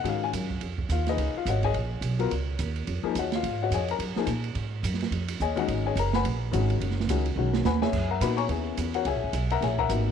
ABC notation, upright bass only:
X:1
M:4/4
L:1/8
Q:"Swing" 1/4=214
K:Dbmix
V:1 name="Upright bass" clef=bass
A,,2 G,,2 F,,2 E,,2 | D,, z A,,,2 B,,,2 C,,2 | D,,2 E,,2 F,, z E,,2 | A,,2 F,,2 G,, z B,,2 |
A,,2 G,,2 F,,2 E,,2 | A,,,2 G,,,2 B,,,2 A,,,2 | G,,,2 D,,2 C,,2 E,,2 | [K:F#mix] F,,2 A,,2 D,,2 E,,2 |
(3C,, A,,, F,,, B,,,2 A,,,2 G,,,2 |]